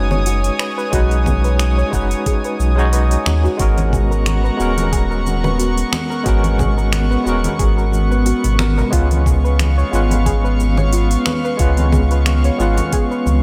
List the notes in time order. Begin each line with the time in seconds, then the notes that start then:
Already playing: F#1 G#3 C#4 D#4 F#4 B4 C#5 G#5 D#6
0.11 C#5, low conga, shaker
0.26 F#4, open hi-hat, shaker
0.44 open hi-hat, shaker
0.59 B4, finger snap, shaker
0.78 B4, shaker
0.90 B1 G#3 C#4 D#4 F#4, kick, open hi-hat, shaker
0.95 B4
1.11 open hi-hat, shaker
1.26 G#4, kick, low conga, shaker
1.44 B4, open hi-hat, shaker
1.59 finger snap, open hi-hat, shaker
1.78 C#5, shaker
1.90 F#1 G#3 C#4 D#4 F#4, kick, shaker
1.95 B4
2.11 open hi-hat, shaker
2.26 G#4, kick, open hi-hat, shaker
2.44 B4, open hi-hat, shaker
2.60 B1, shaker
2.75 G#3 C#4 D#4 F#4 G#4, shaker
2.80 C#5
2.93 B4, open hi-hat, shaker
3.11 open hi-hat, shaker
3.26 D#2 C#5, finger snap, low conga, shaker
3.44 F#4, shaker
3.57 G#1 G#3 B3 C#4 F#4 F#5 A#5 C#6, kick, open hi-hat, shaker
3.62 A#4
3.78 open hi-hat, high conga, shaker
3.93 G#4, kick, low conga, shaker
4.11 A#4, shaker
4.26 finger snap, open hi-hat, high conga, shaker
4.44 B4, shaker
4.57 D#1 G#3 B3 C#4 F#4, shaker
4.62 A#4
4.78 open hi-hat, high conga, shaker
4.92 G#4, kick, open hi-hat, shaker
5.11 A#4, shaker
5.27 high conga, shaker
5.44 B4, low conga, shaker
5.59 F#4, open hi-hat, shaker
5.78 open hi-hat, shaker
5.92 A#4, finger snap, high conga, shaker
6.10 A#4, shaker
6.24 G#1 G#3 B3 C#4 F#4, kick, open hi-hat, shaker
6.28 A#4
6.44 open hi-hat, high conga, shaker
6.58 G#4, kick, low conga, shaker
6.78 A#4, shaker
6.92 finger snap, open hi-hat, high conga, shaker
7.11 B4, shaker
7.24 D#1 G#3 B3 C#4 F#4, shaker
7.29 A#4
7.44 open hi-hat, high conga, shaker
7.59 G#1 G#4, kick, open hi-hat, shaker
7.78 A#4, shaker
7.92 high conga, shaker
8.11 B4, shaker
8.26 F#4, open hi-hat, shaker
8.44 G#1, open hi-hat, low conga, shaker
8.59 A#4, finger snap, high conga, low conga, shaker
8.78 A#4, low conga, shaker
8.90 C#2 G#3 B3 C#4 F4 F5 C#6, kick, open hi-hat, shaker
8.95 B4
9.11 open hi-hat, high conga, shaker
9.26 G#4, kick, low conga, shaker
9.44 B4, shaker
9.59 finger snap, open hi-hat, high conga, shaker
9.78 C#5, shaker
9.91 G#1 G#3 B3 C#4 F4, shaker
9.95 B4
10.11 open hi-hat, high conga, shaker
10.26 G#4, kick, open hi-hat, shaker
10.44 B4, shaker
10.60 high conga, shaker
10.78 C#5, low conga, shaker
10.93 F4, open hi-hat, shaker
11.11 open hi-hat, shaker
11.26 B4, finger snap, high conga, shaker
11.45 B4, shaker
11.57 C#2 G#3 B3 C#4 F4, kick, open hi-hat, shaker
11.62 B4
11.77 open hi-hat, high conga, shaker
11.92 G#4, kick, low conga, shaker
12.11 B4, open hi-hat, shaker
12.26 finger snap, open hi-hat, high conga, shaker
12.44 C#5, open hi-hat, shaker
12.57 G#1 G#3 B3 C#4 F4, shaker
12.62 B4
12.77 open hi-hat, high conga, shaker
12.93 G#4, kick, open hi-hat, shaker
13.11 B4, shaker
13.26 C#2, high conga, shaker